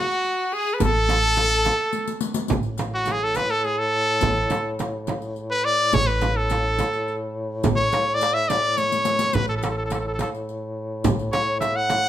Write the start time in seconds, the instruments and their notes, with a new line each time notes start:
Already playing: violin F#4, trumpet F#4
0.11 riq
0.24 riq, darbuka ka
0.51 violin G#4, trumpet G#4
0.74 trumpet B4
0.80 upright bass A1, violin A4, trumpet A4, riq, frame drum, darbuka dum
0.95 riq, darbuka ka
1.09 riq, darbuka tek, frame drum
1.37 riq, darbuka tek, frame drum
1.65 riq, darbuka tek, frame drum
1.93 riq, darbuka ka
2.08 riq
2.21 riq
2.34 riq
2.48 upright bass A1, duduk A2, riq, darbuka dum, frame drum
2.63 riq, darbuka ka
2.78 riq, darbuka tek, frame drum
2.94 trumpet F#4
3.06 riq, darbuka tek, frame drum
3.12 trumpet G#4
3.24 trumpet A4
3.35 trumpet B4, riq, darbuka tek, frame drum
3.50 trumpet A4, riq
3.64 trumpet G#4, riq, darbuka ka
3.79 trumpet A4
4.21 upright bass A1, riq, frame drum, darbuka dum
4.35 riq, darbuka ka
4.50 riq, darbuka tek, frame drum
4.79 riq, darbuka tek, frame drum
5.07 riq, darbuka tek, frame drum
5.22 riq
5.36 riq, darbuka ka
5.50 trumpet B4
5.65 trumpet D5
5.93 upright bass A1, duduk A2, trumpet C#5, riq, frame drum, darbuka dum
6.07 trumpet B4, riq, darbuka ka
6.21 riq, darbuka tek, frame drum
6.36 trumpet A4
6.50 riq, darbuka tek, frame drum
6.79 riq, darbuka tek, frame drum
6.93 riq
7.08 riq, darbuka ka
7.63 upright bass A1, riq, frame drum, darbuka dum
7.76 trumpet C#5, riq
7.92 riq, darbuka tek, frame drum
8.14 trumpet D5
8.21 riq, darbuka tek
8.34 trumpet E5
8.49 trumpet D5, riq, darbuka tek, frame drum
8.64 riq
8.77 trumpet C#5, riq, darbuka ka
8.92 riq
9.05 riq
9.19 riq
9.32 upright bass A1, duduk A2, trumpet B4, riq, frame drum, darbuka dum
9.48 trumpet A4, riq, darbuka ka
9.56 trumpet A4
9.62 trumpet A4, riq, darbuka tek, frame drum
9.70 trumpet A4
9.78 trumpet A4
9.86 trumpet A4
9.90 trumpet A4, riq, darbuka tek, frame drum
10.00 trumpet A4
10.07 trumpet A4
10.14 trumpet A4
10.19 trumpet A4, riq, darbuka tek, frame drum
10.35 riq
10.49 riq, darbuka ka
11.04 upright bass A1, riq, frame drum, darbuka dum
11.19 riq, darbuka ka
11.33 trumpet C#5, riq, darbuka tek, frame drum
11.61 trumpet E5, riq, darbuka tek, frame drum
11.76 trumpet F#5
11.90 riq, darbuka tek, frame drum
12.04 riq